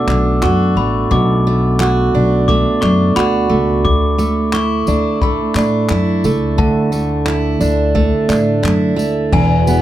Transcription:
Already playing: steel-string acoustic guitar B2 A3 F#4, glockenspiel D6
0.07 upright bass B1, steel-string acoustic guitar D4, clap
0.42 upright bass F#2, steel-string acoustic guitar F#4, glockenspiel C#6, clap
0.75 upright bass A1, steel-string acoustic guitar A3, glockenspiel B5
1.11 upright bass B1, steel-string acoustic guitar B2, glockenspiel D6, kick
1.47 steel-string acoustic guitar A3
1.80 steel-string acoustic guitar F#4, clap
2.14 upright bass B1, steel-string acoustic guitar D4
2.48 steel-string acoustic guitar A3, glockenspiel D6, kick
2.81 upright bass F#2, steel-string acoustic guitar D4, glockenspiel C#6, clap
3.16 upright bass D2, steel-string acoustic guitar F#4, glockenspiel B5, clap
3.49 upright bass C#2, steel-string acoustic guitar A3
3.85 upright bass D2, glockenspiel D6, kick
4.18 steel-string acoustic guitar A3, tambourine
4.53 steel-string acoustic guitar E4, glockenspiel C#6, clap
4.87 upright bass D2, steel-string acoustic guitar D4, tambourine
5.22 steel-string acoustic guitar A3, glockenspiel B5, kick
5.55 upright bass A2, steel-string acoustic guitar D4, clap, tambourine
5.89 upright bass F#2, steel-string acoustic guitar E4, clap
6.24 upright bass C#2, steel-string acoustic guitar A3, tambourine
6.58 upright bass D2, steel-string acoustic guitar D3, glockenspiel A5, kick
6.92 steel-string acoustic guitar A3, tambourine
7.26 steel-string acoustic guitar E4, clap
7.60 upright bass D2, steel-string acoustic guitar D4, tambourine
7.95 steel-string acoustic guitar A3, kick
8.29 upright bass A2, steel-string acoustic guitar D4, clap, tambourine
8.63 upright bass F#2, steel-string acoustic guitar E4, clap
8.96 upright bass D2, steel-string acoustic guitar A3, tambourine
9.32 upright bass E1, steel-string acoustic guitar E2, ambient pad E3 E4 F#4 G#4 B4, glockenspiel G#5, kick, crash
9.67 steel-string acoustic guitar B3, tambourine

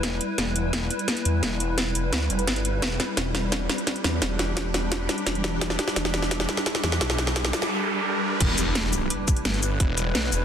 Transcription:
Already playing: synth drone G3 E4 B4
0.03 detuned saw bass E1, kick, snare, closed hi-hat
0.21 closed hi-hat
0.38 detuned saw bass E1, kick, snare, closed hi-hat
0.56 closed hi-hat
0.73 kick, snare, closed hi-hat
0.90 closed hi-hat
0.99 closed hi-hat
1.08 kick, snare, closed hi-hat
1.17 closed hi-hat
1.25 detuned saw bass E2, closed hi-hat
1.43 detuned saw bass E1, kick, snare, closed hi-hat
1.60 closed hi-hat
1.78 kick, snare, closed hi-hat
1.95 detuned saw bass F1, closed hi-hat
2.13 detuned saw bass D2, kick, snare, closed hi-hat
2.30 detuned saw bass F1, closed hi-hat
2.39 closed hi-hat
2.47 detuned saw bass G1, kick, snare, closed hi-hat
2.56 closed hi-hat
2.65 closed hi-hat
2.82 detuned saw bass E1, synth drone D4 G4, kick, snare, closed hi-hat, riser
3.00 snare, closed hi-hat
3.17 detuned saw bass E1, kick, snare, closed hi-hat
3.35 snare, closed hi-hat
3.52 kick, snare, closed hi-hat
3.70 snare, closed hi-hat
3.78 closed hi-hat
3.87 kick, snare, closed hi-hat
3.96 closed hi-hat
4.04 detuned saw bass E2, snare, closed hi-hat
4.22 detuned saw bass E1, kick, snare, closed hi-hat
4.39 snare, closed hi-hat
4.57 kick, snare, closed hi-hat
4.74 snare, closed hi-hat
4.92 kick, snare, closed hi-hat
5.09 snare, closed hi-hat
5.18 closed hi-hat
5.27 detuned saw bass E1, kick, snare, closed hi-hat
5.35 closed hi-hat
5.44 snare, closed hi-hat
5.61 detuned saw bass E1, kick, snare, closed hi-hat
5.70 snare
5.79 snare, closed hi-hat
5.88 snare
5.96 detuned saw bass E1, kick, snare, closed hi-hat
6.05 snare
6.14 snare, closed hi-hat
6.22 snare
6.31 kick, snare, closed hi-hat
6.40 snare
6.49 snare, closed hi-hat
6.57 snare, closed hi-hat
6.66 kick, snare, closed hi-hat
6.75 snare, closed hi-hat
6.83 detuned saw bass E2, snare, closed hi-hat
6.92 snare
7.01 detuned saw bass B1, kick, snare, closed hi-hat, noise sweep
7.10 snare
7.18 snare, closed hi-hat
7.27 snare
7.36 kick, snare, closed hi-hat
7.45 snare
7.53 snare, closed hi-hat
7.62 snare
8.40 detuned saw bass E1, synth drone G3 E4 B4, kick, closed hi-hat, crash, impact
8.58 detuned saw bass E1, closed hi-hat, shaker
8.75 snare, closed hi-hat
8.93 closed hi-hat, shaker
9.10 closed hi-hat
9.28 kick, closed hi-hat, shaker
9.37 closed hi-hat
9.45 detuned saw bass G1, snare, closed hi-hat
9.54 closed hi-hat, shaker
9.63 closed hi-hat, shaker
9.80 detuned saw bass E1, kick, closed hi-hat
9.97 closed hi-hat, shaker
10.15 detuned saw bass B1, snare, closed hi-hat
10.32 detuned saw bass E1, closed hi-hat, shaker

